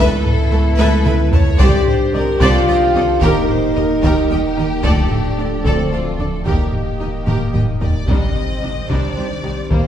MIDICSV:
0, 0, Header, 1, 12, 480
1, 0, Start_track
1, 0, Tempo, 540541
1, 1419, Time_signature, 6, 3, 24, 8
1, 8765, End_track
2, 0, Start_track
2, 0, Title_t, "Violin section"
2, 0, Program_c, 0, 48
2, 0, Note_on_c, 0, 71, 98
2, 0, Note_on_c, 0, 76, 84
2, 203, Note_off_c, 0, 76, 0
2, 205, Note_off_c, 0, 71, 0
2, 461, Note_on_c, 0, 73, 57
2, 464, Note_on_c, 0, 81, 57
2, 532, Note_off_c, 0, 73, 0
2, 535, Note_off_c, 0, 81, 0
2, 691, Note_on_c, 0, 71, 92
2, 695, Note_on_c, 0, 76, 80
2, 918, Note_off_c, 0, 71, 0
2, 920, Note_off_c, 0, 76, 0
2, 937, Note_on_c, 0, 83, 67
2, 939, Note_on_c, 0, 76, 63
2, 1008, Note_off_c, 0, 83, 0
2, 1010, Note_off_c, 0, 76, 0
2, 1185, Note_on_c, 0, 73, 59
2, 1186, Note_on_c, 0, 81, 77
2, 1256, Note_off_c, 0, 73, 0
2, 1257, Note_off_c, 0, 81, 0
2, 1416, Note_on_c, 0, 74, 92
2, 1418, Note_on_c, 0, 72, 88
2, 1640, Note_off_c, 0, 74, 0
2, 1642, Note_off_c, 0, 72, 0
2, 1906, Note_on_c, 0, 75, 55
2, 1908, Note_on_c, 0, 74, 57
2, 1977, Note_off_c, 0, 75, 0
2, 1979, Note_off_c, 0, 74, 0
2, 2148, Note_on_c, 0, 72, 92
2, 2149, Note_on_c, 0, 74, 94
2, 2367, Note_off_c, 0, 72, 0
2, 2368, Note_off_c, 0, 74, 0
2, 2385, Note_on_c, 0, 79, 70
2, 2388, Note_on_c, 0, 75, 65
2, 2456, Note_off_c, 0, 79, 0
2, 2459, Note_off_c, 0, 75, 0
2, 2628, Note_on_c, 0, 75, 71
2, 2629, Note_on_c, 0, 74, 62
2, 2699, Note_off_c, 0, 75, 0
2, 2700, Note_off_c, 0, 74, 0
2, 2854, Note_on_c, 0, 67, 78
2, 2859, Note_on_c, 0, 70, 88
2, 3079, Note_off_c, 0, 67, 0
2, 3082, Note_off_c, 0, 70, 0
2, 3343, Note_on_c, 0, 70, 60
2, 3344, Note_on_c, 0, 75, 62
2, 3414, Note_off_c, 0, 70, 0
2, 3415, Note_off_c, 0, 75, 0
2, 3585, Note_on_c, 0, 70, 84
2, 3586, Note_on_c, 0, 67, 71
2, 3806, Note_off_c, 0, 67, 0
2, 3806, Note_off_c, 0, 70, 0
2, 3820, Note_on_c, 0, 79, 60
2, 3826, Note_on_c, 0, 75, 54
2, 3891, Note_off_c, 0, 79, 0
2, 3897, Note_off_c, 0, 75, 0
2, 4075, Note_on_c, 0, 70, 58
2, 4075, Note_on_c, 0, 75, 60
2, 4146, Note_off_c, 0, 70, 0
2, 4146, Note_off_c, 0, 75, 0
2, 4298, Note_on_c, 0, 69, 79
2, 4302, Note_off_c, 0, 69, 0
2, 4302, Note_on_c, 0, 69, 82
2, 4524, Note_off_c, 0, 69, 0
2, 4786, Note_on_c, 0, 74, 44
2, 4791, Note_off_c, 0, 74, 0
2, 4791, Note_on_c, 0, 74, 49
2, 4862, Note_off_c, 0, 74, 0
2, 5024, Note_on_c, 0, 69, 77
2, 5025, Note_off_c, 0, 69, 0
2, 5025, Note_on_c, 0, 69, 69
2, 5246, Note_off_c, 0, 69, 0
2, 5269, Note_on_c, 0, 77, 42
2, 5341, Note_off_c, 0, 77, 0
2, 5501, Note_on_c, 0, 74, 47
2, 5572, Note_off_c, 0, 74, 0
2, 5737, Note_on_c, 0, 70, 62
2, 5738, Note_on_c, 0, 67, 64
2, 5961, Note_off_c, 0, 70, 0
2, 5962, Note_off_c, 0, 67, 0
2, 6220, Note_on_c, 0, 70, 41
2, 6220, Note_on_c, 0, 75, 42
2, 6291, Note_off_c, 0, 70, 0
2, 6291, Note_off_c, 0, 75, 0
2, 6452, Note_on_c, 0, 70, 56
2, 6453, Note_on_c, 0, 67, 58
2, 6678, Note_off_c, 0, 70, 0
2, 6679, Note_off_c, 0, 67, 0
2, 6692, Note_on_c, 0, 79, 45
2, 6693, Note_on_c, 0, 75, 42
2, 6763, Note_off_c, 0, 79, 0
2, 6764, Note_off_c, 0, 75, 0
2, 6937, Note_on_c, 0, 70, 42
2, 6937, Note_on_c, 0, 75, 44
2, 7008, Note_off_c, 0, 70, 0
2, 7008, Note_off_c, 0, 75, 0
2, 7174, Note_on_c, 0, 63, 50
2, 7178, Note_on_c, 0, 62, 54
2, 7400, Note_off_c, 0, 63, 0
2, 7401, Note_off_c, 0, 62, 0
2, 7658, Note_on_c, 0, 63, 33
2, 7659, Note_on_c, 0, 67, 35
2, 7729, Note_off_c, 0, 63, 0
2, 7730, Note_off_c, 0, 67, 0
2, 7886, Note_on_c, 0, 63, 50
2, 7889, Note_on_c, 0, 62, 50
2, 8115, Note_off_c, 0, 63, 0
2, 8117, Note_off_c, 0, 62, 0
2, 8133, Note_on_c, 0, 72, 44
2, 8134, Note_on_c, 0, 67, 43
2, 8204, Note_off_c, 0, 72, 0
2, 8205, Note_off_c, 0, 67, 0
2, 8377, Note_on_c, 0, 63, 45
2, 8377, Note_on_c, 0, 67, 44
2, 8448, Note_off_c, 0, 63, 0
2, 8448, Note_off_c, 0, 67, 0
2, 8614, Note_on_c, 0, 58, 50
2, 8616, Note_off_c, 0, 58, 0
2, 8616, Note_on_c, 0, 58, 58
2, 8765, Note_off_c, 0, 58, 0
2, 8765, End_track
3, 0, Start_track
3, 0, Title_t, "Violin section"
3, 0, Program_c, 1, 48
3, 0, Note_on_c, 1, 69, 84
3, 686, Note_off_c, 1, 69, 0
3, 698, Note_on_c, 1, 69, 76
3, 933, Note_off_c, 1, 69, 0
3, 949, Note_on_c, 1, 71, 81
3, 1184, Note_off_c, 1, 71, 0
3, 1191, Note_on_c, 1, 73, 80
3, 1420, Note_off_c, 1, 73, 0
3, 1425, Note_on_c, 1, 74, 83
3, 1662, Note_off_c, 1, 74, 0
3, 1663, Note_on_c, 1, 72, 68
3, 1896, Note_off_c, 1, 72, 0
3, 1904, Note_on_c, 1, 70, 85
3, 2137, Note_off_c, 1, 70, 0
3, 2139, Note_on_c, 1, 69, 75
3, 2374, Note_off_c, 1, 69, 0
3, 2384, Note_on_c, 1, 67, 75
3, 2615, Note_on_c, 1, 69, 71
3, 2617, Note_off_c, 1, 67, 0
3, 2852, Note_on_c, 1, 70, 78
3, 2857, Note_off_c, 1, 69, 0
3, 3091, Note_off_c, 1, 70, 0
3, 3099, Note_on_c, 1, 72, 69
3, 3325, Note_on_c, 1, 70, 72
3, 3339, Note_off_c, 1, 72, 0
3, 3572, Note_off_c, 1, 70, 0
3, 3573, Note_on_c, 1, 67, 83
3, 5016, Note_off_c, 1, 67, 0
3, 5016, Note_on_c, 1, 69, 61
3, 5250, Note_on_c, 1, 65, 59
3, 5258, Note_off_c, 1, 69, 0
3, 5494, Note_off_c, 1, 65, 0
3, 5494, Note_on_c, 1, 69, 52
3, 5736, Note_off_c, 1, 69, 0
3, 5736, Note_on_c, 1, 67, 52
3, 6796, Note_off_c, 1, 67, 0
3, 6937, Note_on_c, 1, 74, 53
3, 7161, Note_off_c, 1, 74, 0
3, 7182, Note_on_c, 1, 75, 62
3, 7900, Note_off_c, 1, 75, 0
3, 7908, Note_on_c, 1, 74, 67
3, 8624, Note_off_c, 1, 74, 0
3, 8625, Note_on_c, 1, 72, 68
3, 8765, Note_off_c, 1, 72, 0
3, 8765, End_track
4, 0, Start_track
4, 0, Title_t, "Viola section"
4, 0, Program_c, 2, 48
4, 0, Note_on_c, 2, 69, 71
4, 0, Note_on_c, 2, 71, 76
4, 206, Note_off_c, 2, 69, 0
4, 206, Note_off_c, 2, 71, 0
4, 462, Note_on_c, 2, 69, 66
4, 464, Note_on_c, 2, 71, 58
4, 533, Note_off_c, 2, 69, 0
4, 535, Note_off_c, 2, 71, 0
4, 702, Note_on_c, 2, 71, 92
4, 706, Note_on_c, 2, 69, 89
4, 924, Note_off_c, 2, 71, 0
4, 926, Note_off_c, 2, 69, 0
4, 947, Note_on_c, 2, 71, 68
4, 948, Note_on_c, 2, 69, 70
4, 1019, Note_off_c, 2, 69, 0
4, 1019, Note_off_c, 2, 71, 0
4, 1180, Note_on_c, 2, 69, 68
4, 1182, Note_on_c, 2, 71, 65
4, 1251, Note_off_c, 2, 69, 0
4, 1253, Note_off_c, 2, 71, 0
4, 1417, Note_on_c, 2, 74, 78
4, 1420, Note_on_c, 2, 67, 90
4, 1641, Note_off_c, 2, 74, 0
4, 1643, Note_off_c, 2, 67, 0
4, 1897, Note_on_c, 2, 74, 64
4, 1901, Note_on_c, 2, 67, 64
4, 1968, Note_off_c, 2, 74, 0
4, 1972, Note_off_c, 2, 67, 0
4, 2139, Note_on_c, 2, 67, 93
4, 2141, Note_on_c, 2, 74, 91
4, 2362, Note_off_c, 2, 67, 0
4, 2363, Note_off_c, 2, 74, 0
4, 2383, Note_on_c, 2, 67, 60
4, 2384, Note_on_c, 2, 74, 73
4, 2454, Note_off_c, 2, 67, 0
4, 2455, Note_off_c, 2, 74, 0
4, 2623, Note_on_c, 2, 74, 68
4, 2624, Note_on_c, 2, 67, 65
4, 2694, Note_off_c, 2, 74, 0
4, 2695, Note_off_c, 2, 67, 0
4, 2861, Note_on_c, 2, 67, 90
4, 2861, Note_on_c, 2, 70, 76
4, 3083, Note_off_c, 2, 67, 0
4, 3083, Note_off_c, 2, 70, 0
4, 3342, Note_on_c, 2, 70, 59
4, 3343, Note_on_c, 2, 67, 59
4, 3413, Note_off_c, 2, 70, 0
4, 3414, Note_off_c, 2, 67, 0
4, 3586, Note_on_c, 2, 67, 72
4, 3586, Note_on_c, 2, 70, 72
4, 3806, Note_off_c, 2, 67, 0
4, 3806, Note_off_c, 2, 70, 0
4, 3818, Note_on_c, 2, 70, 61
4, 3819, Note_on_c, 2, 67, 55
4, 3889, Note_off_c, 2, 70, 0
4, 3890, Note_off_c, 2, 67, 0
4, 4057, Note_on_c, 2, 70, 60
4, 4058, Note_on_c, 2, 67, 61
4, 4128, Note_off_c, 2, 70, 0
4, 4129, Note_off_c, 2, 67, 0
4, 4297, Note_on_c, 2, 74, 77
4, 4298, Note_on_c, 2, 69, 69
4, 4521, Note_off_c, 2, 74, 0
4, 4522, Note_off_c, 2, 69, 0
4, 4777, Note_on_c, 2, 74, 49
4, 4778, Note_on_c, 2, 69, 53
4, 4848, Note_off_c, 2, 74, 0
4, 4849, Note_off_c, 2, 69, 0
4, 5017, Note_on_c, 2, 69, 69
4, 5017, Note_on_c, 2, 74, 62
4, 5241, Note_off_c, 2, 69, 0
4, 5241, Note_off_c, 2, 74, 0
4, 5256, Note_on_c, 2, 69, 55
4, 5260, Note_on_c, 2, 74, 44
4, 5327, Note_off_c, 2, 69, 0
4, 5331, Note_off_c, 2, 74, 0
4, 5494, Note_on_c, 2, 74, 43
4, 5495, Note_on_c, 2, 69, 44
4, 5565, Note_off_c, 2, 74, 0
4, 5566, Note_off_c, 2, 69, 0
4, 5731, Note_on_c, 2, 67, 59
4, 5958, Note_off_c, 2, 67, 0
4, 6215, Note_on_c, 2, 67, 42
4, 6217, Note_off_c, 2, 67, 0
4, 6217, Note_on_c, 2, 67, 41
4, 6288, Note_off_c, 2, 67, 0
4, 6452, Note_on_c, 2, 67, 54
4, 6678, Note_off_c, 2, 67, 0
4, 6696, Note_on_c, 2, 67, 41
4, 6698, Note_off_c, 2, 67, 0
4, 6698, Note_on_c, 2, 67, 38
4, 6769, Note_off_c, 2, 67, 0
4, 6938, Note_on_c, 2, 67, 36
4, 6940, Note_off_c, 2, 67, 0
4, 6940, Note_on_c, 2, 67, 44
4, 7011, Note_off_c, 2, 67, 0
4, 7177, Note_on_c, 2, 55, 52
4, 7180, Note_on_c, 2, 62, 54
4, 7401, Note_off_c, 2, 55, 0
4, 7403, Note_off_c, 2, 62, 0
4, 7655, Note_on_c, 2, 55, 37
4, 7655, Note_on_c, 2, 62, 43
4, 7726, Note_off_c, 2, 55, 0
4, 7726, Note_off_c, 2, 62, 0
4, 7898, Note_on_c, 2, 55, 50
4, 7899, Note_on_c, 2, 62, 58
4, 8122, Note_off_c, 2, 55, 0
4, 8122, Note_off_c, 2, 62, 0
4, 8136, Note_on_c, 2, 62, 39
4, 8137, Note_on_c, 2, 55, 38
4, 8207, Note_off_c, 2, 62, 0
4, 8208, Note_off_c, 2, 55, 0
4, 8376, Note_on_c, 2, 55, 38
4, 8377, Note_on_c, 2, 62, 40
4, 8447, Note_off_c, 2, 55, 0
4, 8448, Note_off_c, 2, 62, 0
4, 8622, Note_on_c, 2, 55, 47
4, 8624, Note_on_c, 2, 58, 49
4, 8765, Note_off_c, 2, 55, 0
4, 8765, Note_off_c, 2, 58, 0
4, 8765, End_track
5, 0, Start_track
5, 0, Title_t, "Analog synth pad"
5, 0, Program_c, 3, 89
5, 0, Note_on_c, 3, 52, 77
5, 0, Note_on_c, 3, 59, 78
5, 0, Note_on_c, 3, 69, 71
5, 0, Note_on_c, 3, 71, 71
5, 1422, Note_off_c, 3, 69, 0
5, 1423, Note_off_c, 3, 52, 0
5, 1423, Note_off_c, 3, 59, 0
5, 1425, Note_off_c, 3, 71, 0
5, 1427, Note_on_c, 3, 67, 75
5, 1428, Note_on_c, 3, 72, 76
5, 1433, Note_on_c, 3, 51, 73
5, 1436, Note_on_c, 3, 62, 70
5, 2864, Note_off_c, 3, 72, 0
5, 2868, Note_off_c, 3, 62, 0
5, 2872, Note_on_c, 3, 58, 70
5, 2873, Note_on_c, 3, 70, 74
5, 4303, Note_off_c, 3, 67, 0
5, 4303, Note_on_c, 3, 74, 72
5, 4305, Note_off_c, 3, 58, 0
5, 4306, Note_off_c, 3, 51, 0
5, 4306, Note_off_c, 3, 70, 0
5, 4306, Note_on_c, 3, 69, 66
5, 4307, Note_on_c, 3, 53, 70
5, 4310, Note_on_c, 3, 57, 72
5, 5741, Note_off_c, 3, 74, 0
5, 5741, Note_on_c, 3, 51, 71
5, 5742, Note_on_c, 3, 75, 67
5, 5743, Note_off_c, 3, 53, 0
5, 5743, Note_off_c, 3, 69, 0
5, 5744, Note_off_c, 3, 57, 0
5, 5744, Note_on_c, 3, 58, 67
5, 5744, Note_on_c, 3, 67, 69
5, 7175, Note_off_c, 3, 67, 0
5, 7178, Note_off_c, 3, 51, 0
5, 7180, Note_off_c, 3, 75, 0
5, 7182, Note_off_c, 3, 58, 0
5, 7186, Note_on_c, 3, 67, 63
5, 7187, Note_on_c, 3, 72, 61
5, 7188, Note_on_c, 3, 51, 60
5, 7189, Note_on_c, 3, 60, 58
5, 8588, Note_off_c, 3, 60, 0
5, 8588, Note_off_c, 3, 72, 0
5, 8625, Note_on_c, 3, 75, 58
5, 8630, Note_on_c, 3, 58, 55
5, 8765, Note_off_c, 3, 51, 0
5, 8765, Note_off_c, 3, 58, 0
5, 8765, Note_off_c, 3, 67, 0
5, 8765, Note_off_c, 3, 75, 0
5, 8765, End_track
6, 0, Start_track
6, 0, Title_t, "French horn section"
6, 0, Program_c, 4, 60
6, 0, Note_on_c, 4, 64, 113
6, 1386, Note_off_c, 4, 64, 0
6, 1418, Note_on_c, 4, 67, 114
6, 2124, Note_off_c, 4, 67, 0
6, 2137, Note_on_c, 4, 65, 119
6, 2857, Note_on_c, 4, 63, 105
6, 2858, Note_off_c, 4, 65, 0
6, 4290, Note_on_c, 4, 62, 93
6, 4298, Note_off_c, 4, 63, 0
6, 5000, Note_off_c, 4, 62, 0
6, 5004, Note_on_c, 4, 60, 84
6, 5586, Note_off_c, 4, 60, 0
6, 5737, Note_on_c, 4, 58, 66
6, 6914, Note_off_c, 4, 58, 0
6, 8765, End_track
7, 0, Start_track
7, 0, Title_t, "Synth pluck"
7, 0, Program_c, 5, 84
7, 0, Note_on_c, 5, 57, 100
7, 120, Note_off_c, 5, 57, 0
7, 461, Note_on_c, 5, 69, 71
7, 604, Note_off_c, 5, 69, 0
7, 701, Note_on_c, 5, 57, 98
7, 844, Note_off_c, 5, 57, 0
7, 945, Note_on_c, 5, 61, 61
7, 1087, Note_off_c, 5, 61, 0
7, 1180, Note_on_c, 5, 69, 69
7, 1324, Note_off_c, 5, 69, 0
7, 1421, Note_on_c, 5, 48, 102
7, 1565, Note_off_c, 5, 48, 0
7, 1899, Note_on_c, 5, 60, 74
7, 2043, Note_off_c, 5, 60, 0
7, 2141, Note_on_c, 5, 48, 96
7, 2285, Note_off_c, 5, 48, 0
7, 2379, Note_on_c, 5, 51, 62
7, 2523, Note_off_c, 5, 51, 0
7, 2627, Note_on_c, 5, 60, 68
7, 2769, Note_off_c, 5, 60, 0
7, 2859, Note_on_c, 5, 51, 103
7, 3003, Note_off_c, 5, 51, 0
7, 3342, Note_on_c, 5, 63, 68
7, 3485, Note_off_c, 5, 63, 0
7, 3583, Note_on_c, 5, 51, 96
7, 3726, Note_off_c, 5, 51, 0
7, 3820, Note_on_c, 5, 55, 61
7, 3964, Note_off_c, 5, 55, 0
7, 4060, Note_on_c, 5, 63, 70
7, 4204, Note_off_c, 5, 63, 0
7, 4295, Note_on_c, 5, 50, 91
7, 4440, Note_off_c, 5, 50, 0
7, 4783, Note_on_c, 5, 62, 67
7, 4926, Note_off_c, 5, 62, 0
7, 5027, Note_on_c, 5, 50, 92
7, 5168, Note_off_c, 5, 50, 0
7, 5263, Note_on_c, 5, 53, 57
7, 5406, Note_off_c, 5, 53, 0
7, 5505, Note_on_c, 5, 62, 58
7, 5647, Note_off_c, 5, 62, 0
7, 5735, Note_on_c, 5, 51, 86
7, 5880, Note_off_c, 5, 51, 0
7, 6221, Note_on_c, 5, 63, 62
7, 6364, Note_off_c, 5, 63, 0
7, 6457, Note_on_c, 5, 51, 86
7, 6602, Note_off_c, 5, 51, 0
7, 6694, Note_on_c, 5, 55, 55
7, 6840, Note_off_c, 5, 55, 0
7, 6940, Note_on_c, 5, 63, 62
7, 7083, Note_off_c, 5, 63, 0
7, 7175, Note_on_c, 5, 48, 76
7, 7320, Note_off_c, 5, 48, 0
7, 7654, Note_on_c, 5, 60, 55
7, 7800, Note_off_c, 5, 60, 0
7, 7901, Note_on_c, 5, 48, 82
7, 8044, Note_off_c, 5, 48, 0
7, 8138, Note_on_c, 5, 51, 48
7, 8283, Note_off_c, 5, 51, 0
7, 8375, Note_on_c, 5, 60, 60
7, 8521, Note_off_c, 5, 60, 0
7, 8618, Note_on_c, 5, 51, 77
7, 8763, Note_off_c, 5, 51, 0
7, 8765, End_track
8, 0, Start_track
8, 0, Title_t, "Cello section"
8, 0, Program_c, 6, 48
8, 459, Note_on_c, 6, 37, 57
8, 530, Note_off_c, 6, 37, 0
8, 695, Note_on_c, 6, 37, 96
8, 766, Note_off_c, 6, 37, 0
8, 944, Note_on_c, 6, 37, 65
8, 1015, Note_off_c, 6, 37, 0
8, 1180, Note_on_c, 6, 37, 67
8, 1251, Note_off_c, 6, 37, 0
8, 1418, Note_on_c, 6, 36, 90
8, 1489, Note_off_c, 6, 36, 0
8, 1898, Note_on_c, 6, 36, 59
8, 1969, Note_off_c, 6, 36, 0
8, 2140, Note_on_c, 6, 36, 95
8, 2211, Note_off_c, 6, 36, 0
8, 2383, Note_on_c, 6, 36, 66
8, 2454, Note_off_c, 6, 36, 0
8, 2616, Note_on_c, 6, 36, 64
8, 2688, Note_off_c, 6, 36, 0
8, 2859, Note_on_c, 6, 39, 87
8, 2930, Note_off_c, 6, 39, 0
8, 3337, Note_on_c, 6, 39, 58
8, 3408, Note_off_c, 6, 39, 0
8, 3576, Note_on_c, 6, 39, 84
8, 3647, Note_off_c, 6, 39, 0
8, 3816, Note_on_c, 6, 39, 62
8, 3887, Note_off_c, 6, 39, 0
8, 4058, Note_on_c, 6, 39, 57
8, 4129, Note_off_c, 6, 39, 0
8, 4294, Note_on_c, 6, 38, 78
8, 4365, Note_off_c, 6, 38, 0
8, 4779, Note_on_c, 6, 38, 46
8, 4850, Note_off_c, 6, 38, 0
8, 5020, Note_on_c, 6, 38, 73
8, 5091, Note_off_c, 6, 38, 0
8, 5264, Note_on_c, 6, 38, 49
8, 5335, Note_off_c, 6, 38, 0
8, 5499, Note_on_c, 6, 38, 43
8, 5570, Note_off_c, 6, 38, 0
8, 5745, Note_on_c, 6, 39, 64
8, 5816, Note_off_c, 6, 39, 0
8, 6221, Note_on_c, 6, 39, 41
8, 6292, Note_off_c, 6, 39, 0
8, 6459, Note_on_c, 6, 39, 58
8, 6530, Note_off_c, 6, 39, 0
8, 6697, Note_on_c, 6, 39, 40
8, 6768, Note_off_c, 6, 39, 0
8, 6938, Note_on_c, 6, 39, 39
8, 7009, Note_off_c, 6, 39, 0
8, 7176, Note_on_c, 6, 36, 57
8, 7247, Note_off_c, 6, 36, 0
8, 7659, Note_on_c, 6, 36, 40
8, 7730, Note_off_c, 6, 36, 0
8, 7896, Note_on_c, 6, 36, 56
8, 7967, Note_off_c, 6, 36, 0
8, 8137, Note_on_c, 6, 36, 42
8, 8208, Note_off_c, 6, 36, 0
8, 8378, Note_on_c, 6, 36, 40
8, 8449, Note_off_c, 6, 36, 0
8, 8618, Note_on_c, 6, 39, 55
8, 8689, Note_off_c, 6, 39, 0
8, 8765, End_track
9, 0, Start_track
9, 0, Title_t, "Double bass section"
9, 0, Program_c, 7, 48
9, 453, Note_on_c, 7, 37, 62
9, 524, Note_off_c, 7, 37, 0
9, 696, Note_on_c, 7, 37, 82
9, 767, Note_off_c, 7, 37, 0
9, 938, Note_on_c, 7, 37, 57
9, 1009, Note_off_c, 7, 37, 0
9, 1177, Note_on_c, 7, 37, 59
9, 1248, Note_off_c, 7, 37, 0
9, 1420, Note_on_c, 7, 36, 103
9, 1491, Note_off_c, 7, 36, 0
9, 1900, Note_on_c, 7, 36, 63
9, 1971, Note_off_c, 7, 36, 0
9, 2143, Note_on_c, 7, 36, 88
9, 2214, Note_off_c, 7, 36, 0
9, 2381, Note_on_c, 7, 36, 62
9, 2452, Note_off_c, 7, 36, 0
9, 2620, Note_on_c, 7, 36, 57
9, 2691, Note_off_c, 7, 36, 0
9, 2857, Note_on_c, 7, 39, 86
9, 2928, Note_off_c, 7, 39, 0
9, 3342, Note_on_c, 7, 39, 63
9, 3413, Note_off_c, 7, 39, 0
9, 3577, Note_on_c, 7, 39, 79
9, 3648, Note_off_c, 7, 39, 0
9, 3820, Note_on_c, 7, 39, 57
9, 3891, Note_off_c, 7, 39, 0
9, 4063, Note_on_c, 7, 39, 51
9, 4134, Note_off_c, 7, 39, 0
9, 4305, Note_on_c, 7, 38, 89
9, 4376, Note_off_c, 7, 38, 0
9, 4786, Note_on_c, 7, 38, 49
9, 4857, Note_off_c, 7, 38, 0
9, 5022, Note_on_c, 7, 38, 72
9, 5093, Note_off_c, 7, 38, 0
9, 5260, Note_on_c, 7, 38, 45
9, 5331, Note_off_c, 7, 38, 0
9, 5497, Note_on_c, 7, 38, 41
9, 5568, Note_off_c, 7, 38, 0
9, 5740, Note_on_c, 7, 39, 67
9, 5811, Note_off_c, 7, 39, 0
9, 6220, Note_on_c, 7, 39, 39
9, 6291, Note_off_c, 7, 39, 0
9, 6460, Note_on_c, 7, 39, 54
9, 6531, Note_off_c, 7, 39, 0
9, 6702, Note_on_c, 7, 39, 40
9, 6773, Note_off_c, 7, 39, 0
9, 6944, Note_on_c, 7, 39, 39
9, 7015, Note_off_c, 7, 39, 0
9, 7179, Note_on_c, 7, 36, 58
9, 7250, Note_off_c, 7, 36, 0
9, 7658, Note_on_c, 7, 36, 38
9, 7729, Note_off_c, 7, 36, 0
9, 7902, Note_on_c, 7, 36, 57
9, 7973, Note_off_c, 7, 36, 0
9, 8147, Note_on_c, 7, 36, 38
9, 8218, Note_off_c, 7, 36, 0
9, 8385, Note_on_c, 7, 36, 40
9, 8456, Note_off_c, 7, 36, 0
9, 8625, Note_on_c, 7, 39, 56
9, 8696, Note_off_c, 7, 39, 0
9, 8765, End_track
10, 0, Start_track
10, 0, Title_t, "Sub bass"
10, 0, Program_c, 8, 38
10, 0, Note_on_c, 8, 37, 75
10, 1427, Note_on_c, 8, 36, 73
10, 1440, Note_off_c, 8, 37, 0
10, 2862, Note_on_c, 8, 27, 77
10, 2875, Note_off_c, 8, 36, 0
10, 4307, Note_on_c, 8, 26, 74
10, 4320, Note_off_c, 8, 27, 0
10, 5738, Note_on_c, 8, 27, 62
10, 5752, Note_off_c, 8, 26, 0
10, 7179, Note_off_c, 8, 27, 0
10, 8765, End_track
11, 0, Start_track
11, 0, Title_t, "Impact"
11, 0, Program_c, 10, 103
11, 7179, Note_on_c, 10, 60, 51
11, 8619, Note_off_c, 10, 60, 0
11, 8765, End_track
12, 0, Start_track
12, 0, Title_t, "Taiko and cinematic ensemble drums"
12, 221, Note_on_c, 9, 45, 56
12, 310, Note_off_c, 9, 45, 0
12, 699, Note_on_c, 9, 48, 79
12, 788, Note_off_c, 9, 48, 0
12, 939, Note_on_c, 9, 47, 83
12, 1028, Note_off_c, 9, 47, 0
12, 1178, Note_on_c, 9, 43, 90
12, 1266, Note_off_c, 9, 43, 0
12, 1417, Note_on_c, 9, 41, 101
12, 1506, Note_off_c, 9, 41, 0
12, 1655, Note_on_c, 9, 45, 52
12, 1744, Note_off_c, 9, 45, 0
12, 2135, Note_on_c, 9, 41, 84
12, 2224, Note_off_c, 9, 41, 0
12, 2855, Note_on_c, 9, 41, 88
12, 2943, Note_off_c, 9, 41, 0
12, 3099, Note_on_c, 9, 45, 49
12, 3188, Note_off_c, 9, 45, 0
12, 3578, Note_on_c, 9, 41, 80
12, 3667, Note_off_c, 9, 41, 0
12, 4298, Note_on_c, 9, 41, 94
12, 4387, Note_off_c, 9, 41, 0
12, 4537, Note_on_c, 9, 45, 50
12, 4626, Note_off_c, 9, 45, 0
12, 5017, Note_on_c, 9, 41, 75
12, 5105, Note_off_c, 9, 41, 0
12, 5738, Note_on_c, 9, 41, 81
12, 5827, Note_off_c, 9, 41, 0
12, 5978, Note_on_c, 9, 45, 42
12, 6067, Note_off_c, 9, 45, 0
12, 6457, Note_on_c, 9, 45, 66
12, 6546, Note_off_c, 9, 45, 0
12, 6698, Note_on_c, 9, 45, 76
12, 6787, Note_off_c, 9, 45, 0
12, 6938, Note_on_c, 9, 43, 81
12, 7027, Note_off_c, 9, 43, 0
12, 7176, Note_on_c, 9, 41, 75
12, 7265, Note_off_c, 9, 41, 0
12, 7898, Note_on_c, 9, 41, 69
12, 7987, Note_off_c, 9, 41, 0
12, 8618, Note_on_c, 9, 41, 80
12, 8707, Note_off_c, 9, 41, 0
12, 8765, End_track
0, 0, End_of_file